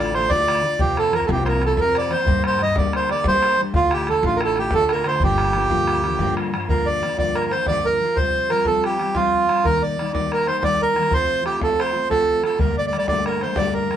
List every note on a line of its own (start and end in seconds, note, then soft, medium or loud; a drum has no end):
0.00 0.25 A1 loud
0.00 0.16 D2 medium
0.00 0.16 A2 medium
0.00 0.15 D3 medium
0.00 0.15 A3 medium
0.00 0.14 D4 medium
0.00 0.13 F4 medium
0.00 0.14 D5 medium
0.14 0.29 D3 soft
0.14 0.30 A3 soft
0.14 0.30 D4 soft
0.14 0.30 F4 medium
0.14 0.31 C5 medium
0.14 bodhran medium
0.30 0.64 D2 medium
0.30 0.63 A2 medium
0.30 0.62 D3 medium
0.30 0.74 D3 medium
0.30 0.63 A3 medium
0.30 0.64 D4 medium
0.30 0.65 F4 medium
0.30 0.81 D5 loud
0.30 bodhran medium
0.48 bodhran medium
0.63 0.79 D3 medium
0.63 0.79 A3 soft
0.63 0.80 D4 medium
0.63 0.79 F4 medium
0.78 1.12 F2 medium
0.78 1.24 F2 medium
0.78 1.12 C3 medium
0.78 1.11 F3 medium
0.78 1.13 A#3 medium
0.78 1.13 C4 medium
0.78 1.13 F4 medium
0.78 0.98 G4 medium
0.78 bodhran medium
0.97 1.14 A4 medium
0.97 bodhran medium
1.12 1.28 F3 medium
1.12 1.28 A#3 medium
1.12 1.28 C4 medium
1.12 1.27 F4 medium
1.12 1.26 A#4 medium
1.12 bodhran medium
1.20 bodhran soft
1.26 1.72 C2 loud
1.26 1.63 C3 soft
1.26 1.62 F3 medium
1.26 1.64 A#3 medium
1.26 1.62 C4 medium
1.26 1.60 F4 medium
1.26 1.29 A4 medium
1.26 bodhran medium
1.30 1.63 F2 soft
1.30 1.44 G4 medium
1.45 1.64 A#4 medium
1.45 1.48 C5 medium
1.45 bodhran medium
1.62 1.76 F3 soft
1.62 1.77 A#3 soft
1.62 1.78 C4 soft
1.62 1.78 F4 soft
1.62 bodhran medium
1.66 1.80 A4 medium
1.76 2.10 F2 medium
1.76 2.11 C3 medium
1.76 2.09 F3 medium
1.76 2.21 F3 medium
1.76 2.10 A#3 medium
1.76 2.11 C4 medium
1.76 2.12 F4 medium
1.76 1.97 A#4 medium
1.76 bodhran medium
1.95 2.13 D5 medium
1.95 bodhran medium
2.10 2.25 F3 medium
2.10 2.26 A#3 medium
2.10 2.27 C4 medium
2.10 2.27 F4 soft
2.10 2.43 C5 medium
2.10 bodhran medium
2.26 2.70 G2 loud
2.26 2.58 G3 medium
2.26 2.60 A#3 medium
2.26 2.62 D4 medium
2.26 2.61 G4 medium
2.26 bodhran medium
2.44 2.62 C5 medium
2.44 bodhran medium
2.59 2.76 G3 medium
2.59 2.76 A#3 medium
2.59 2.75 D4 medium
2.59 2.75 G4 medium
2.59 2.76 D#5 medium
2.59 bodhran medium
2.69 bodhran soft
2.76 3.20 D2 medium
2.76 3.10 G3 soft
2.76 3.10 A#3 medium
2.76 3.11 D4 medium
2.76 3.08 G4 medium
2.76 2.93 D5 medium
2.76 bodhran medium
2.93 3.09 C5 medium
2.93 bodhran medium
3.09 3.26 A#3 soft
3.09 3.26 D4 soft
3.09 3.25 G4 soft
3.09 3.26 D5 medium
3.09 bodhran medium
3.24 3.69 G3 medium
3.24 3.57 G3 medium
3.24 3.59 A#3 medium
3.24 3.61 D4 medium
3.24 3.61 C5 loud
3.24 bodhran medium
3.28 3.60 G4 medium
3.43 bodhran medium
3.59 3.74 G3 soft
3.59 3.75 A#3 medium
3.59 3.74 D4 medium
3.59 3.75 G4 medium
3.73 4.07 D2 medium
3.73 4.17 D2 loud
3.73 4.07 A2 medium
3.73 4.07 D3 medium
3.73 4.07 A3 medium
3.73 4.09 D4 medium
3.73 3.93 F4 medium
3.73 4.10 F4 medium
3.73 bodhran medium
3.91 4.09 G4 medium
3.91 bodhran medium
4.07 4.23 D3 medium
4.07 4.24 A3 medium
4.07 4.23 D4 medium
4.07 4.23 F4 medium
4.07 4.25 A4 medium
4.07 bodhran medium
4.15 bodhran soft
4.23 4.66 A1 loud
4.23 4.58 D2 soft
4.23 4.58 A2 medium
4.23 4.60 D3 medium
4.23 4.57 A3 medium
4.23 4.59 D4 medium
4.23 4.57 F4 medium
4.23 4.38 F4 medium
4.23 bodhran medium
4.36 4.41 A#4 medium
4.41 4.59 A4 medium
4.41 bodhran medium
4.56 4.73 A3 soft
4.56 4.73 D4 medium
4.56 4.73 F4 medium
4.56 4.74 G4 medium
4.56 bodhran medium
4.61 4.72 D3 soft
4.71 5.06 D2 medium
4.71 5.06 A2 medium
4.71 5.16 D3 medium
4.71 5.04 D3 medium
4.71 5.04 A3 medium
4.71 5.06 D4 medium
4.71 5.07 F4 medium
4.71 4.91 A4 loud
4.71 bodhran medium
4.89 5.07 A#4 medium
4.89 bodhran medium
5.04 5.21 D3 soft
5.04 5.21 A3 medium
5.04 5.22 D4 medium
5.04 5.22 F4 medium
5.04 5.23 C5 medium
5.04 bodhran medium
5.20 5.64 G1 medium
5.20 5.55 G2 medium
5.20 5.72 D3 medium
5.20 5.54 F3 medium
5.20 5.55 A#3 medium
5.20 5.56 D4 medium
5.20 5.57 F4 medium
5.20 6.35 G4 medium
5.20 bodhran medium
5.38 bodhran medium
5.53 5.70 F3 soft
5.53 5.70 A#3 medium
5.53 5.70 D4 medium
5.53 bodhran medium
5.58 5.69 F4 medium
5.62 bodhran soft
5.70 6.14 D2 medium
5.70 6.05 G2 medium
5.70 6.19 D3 medium
5.70 6.06 F3 medium
5.70 6.06 A#3 medium
5.70 6.04 D4 medium
5.70 6.03 F4 medium
5.70 bodhran medium
5.87 bodhran medium
6.04 6.19 F3 soft
6.04 6.19 A#3 soft
6.04 6.20 D4 medium
6.04 6.19 F4 soft
6.04 bodhran medium
6.19 6.63 G2 medium
6.19 6.53 G2 medium
6.19 6.53 D3 medium
6.19 6.53 F3 medium
6.19 6.53 A#3 medium
6.19 6.54 D4 medium
6.19 6.57 F4 medium
6.19 bodhran medium
6.37 bodhran medium
6.53 6.69 F3 medium
6.53 6.69 A#3 medium
6.53 6.70 D4 medium
6.53 6.69 F4 medium
6.53 bodhran medium
6.69 7.02 G2 medium
6.69 7.02 D3 medium
6.69 7.02 F3 medium
6.69 7.02 A#3 medium
6.69 7.03 D4 medium
6.69 7.06 F4 medium
6.69 6.87 A#4 medium
6.69 bodhran medium
6.86 7.17 D5 medium
6.86 bodhran soft
7.02 7.18 F3 medium
7.02 7.17 A#3 medium
7.02 7.17 D4 medium
7.02 7.16 F4 soft
7.02 bodhran soft
7.17 7.52 G2 soft
7.17 7.52 D3 soft
7.17 7.55 F3 medium
7.17 7.52 A#3 medium
7.17 7.52 D4 soft
7.17 7.52 F4 medium
7.17 7.37 D5 medium
7.17 bodhran medium
7.36 7.52 A#4 medium
7.36 bodhran medium
7.51 7.68 F3 soft
7.51 7.68 A#3 soft
7.51 7.68 D4 soft
7.51 7.67 F4 soft
7.51 7.66 C5 medium
7.51 bodhran medium
7.66 8.01 G2 medium
7.66 8.01 D3 medium
7.66 8.00 F3 medium
7.66 8.01 A#3 medium
7.66 8.02 D4 medium
7.66 8.02 F4 medium
7.66 7.86 D5 loud
7.66 bodhran medium
7.85 8.18 A#4 medium
7.85 bodhran soft
8.01 8.15 F3 medium
8.01 8.17 A#3 soft
8.01 8.18 D4 medium
8.01 8.18 F4 medium
8.16 8.48 F3 medium
8.16 8.50 G3 medium
8.16 8.50 C4 medium
8.16 8.51 F4 medium
8.16 8.51 C5 medium
8.16 bodhran medium
8.34 bodhran soft
8.50 8.65 F3 medium
8.50 8.66 G3 medium
8.50 8.65 C4 medium
8.50 8.64 F4 medium
8.50 8.66 A#4 medium
8.50 bodhran soft
8.65 9.00 F3 soft
8.65 9.01 G3 medium
8.65 9.00 C4 medium
8.65 8.97 F4 medium
8.65 8.84 A4 medium
8.65 bodhran medium
8.84 9.17 G4 medium
8.84 bodhran medium
8.98 9.14 G3 soft
8.98 9.15 C4 soft
8.98 9.14 F4 medium
8.98 bodhran medium
9.15 9.46 F3 medium
9.15 9.47 G3 medium
9.15 9.49 C4 medium
9.15 9.66 F4 loud
9.15 9.49 F4 medium
9.15 bodhran medium
9.33 bodhran soft
9.47 9.63 F3 medium
9.47 9.64 G3 medium
9.47 9.65 C4 medium
9.47 9.65 F4 medium
9.47 bodhran medium
9.63 9.97 D#3 medium
9.63 9.97 G3 medium
9.63 9.98 A#3 medium
9.63 9.98 D#4 medium
9.63 9.83 A#4 loud
9.63 bodhran medium
9.83 10.12 D5 medium
9.98 10.13 D#3 medium
9.98 10.14 G3 medium
9.98 10.13 A#3 medium
9.98 10.12 D#4 medium
9.98 bodhran soft
10.13 10.48 D#3 medium
10.13 10.48 G3 medium
10.13 10.46 A#3 medium
10.13 10.45 D#4 medium
10.13 10.32 D5 medium
10.13 bodhran medium
10.32 10.47 A#4 medium
10.32 bodhran medium
10.46 10.61 G3 soft
10.46 10.62 A#3 medium
10.46 10.62 D#4 medium
10.46 10.63 C5 medium
10.46 bodhran medium
10.61 10.94 D#3 medium
10.61 10.95 G3 medium
10.61 10.96 A#3 medium
10.61 10.97 D#4 medium
10.61 10.81 D5 loud
10.61 bodhran medium
10.81 11.14 A#4 loud
10.81 bodhran soft
10.95 11.09 D#3 soft
10.95 11.10 G3 medium
10.95 11.11 A#3 medium
10.95 11.11 D#4 medium
10.95 bodhran medium
11.09 11.42 F3 medium
11.09 11.45 A3 medium
11.09 11.43 C4 medium
11.09 11.45 F4 medium
11.09 bodhran medium
11.14 11.44 C5 loud
11.43 11.60 F3 medium
11.43 11.59 A3 medium
11.43 11.60 C4 medium
11.43 11.58 F4 medium
11.43 11.60 G4 medium
11.43 bodhran medium
11.59 11.95 F3 soft
11.59 11.94 A3 medium
11.59 11.95 C4 medium
11.59 11.91 F4 medium
11.59 11.80 A4 medium
11.59 bodhran medium
11.80 12.08 C5 medium
11.80 bodhran medium
11.93 12.09 A3 soft
11.93 12.09 C4 soft
11.93 12.09 F4 soft
12.09 12.42 F3 medium
12.09 12.44 A3 medium
12.09 12.44 C4 medium
12.09 12.44 F4 medium
12.09 12.43 A4 medium
12.09 bodhran medium
12.29 bodhran soft
12.43 12.58 F3 soft
12.43 12.59 A3 medium
12.43 12.58 C4 medium
12.43 12.60 F4 soft
12.43 12.59 A4 medium
12.43 bodhran medium
12.58 12.92 G2 medium
12.58 12.92 D3 medium
12.58 12.92 G3 medium
12.58 12.93 A3 medium
12.58 12.92 A#3 medium
12.58 12.93 D4 medium
12.58 12.76 A#4 medium
12.58 bodhran medium
12.78 12.86 D5 medium
12.78 bodhran soft
12.87 12.97 D5 medium
12.92 13.08 G3 soft
12.92 13.07 A3 medium
12.92 13.08 A#3 medium
12.92 13.07 D4 medium
12.92 bodhran soft
12.98 13.06 D5 medium
13.08 13.43 G2 medium
13.08 13.43 D3 medium
13.08 13.43 G3 medium
13.08 13.41 A3 medium
13.08 13.42 A#3 medium
13.08 13.39 D4 medium
13.08 13.25 D5 medium
13.08 bodhran medium
13.26 13.42 A#4 medium
13.26 bodhran medium
13.41 13.55 G3 soft
13.41 13.56 A3 soft
13.41 13.56 A#3 soft
13.41 13.57 D4 medium
13.41 13.58 C5 medium
13.41 bodhran medium
13.56 13.90 G2 medium
13.56 13.90 D3 medium
13.56 13.89 G3 medium
13.56 13.91 A3 medium
13.56 13.90 A#3 medium
13.56 13.91 D4 medium
13.56 13.74 D5 loud
13.56 bodhran medium
13.74 13.96 A#4 medium
13.74 bodhran soft
13.90 13.96 G3 medium
13.90 13.96 A3 medium
13.90 13.96 A#3 soft
13.90 13.96 D4 medium
13.90 bodhran medium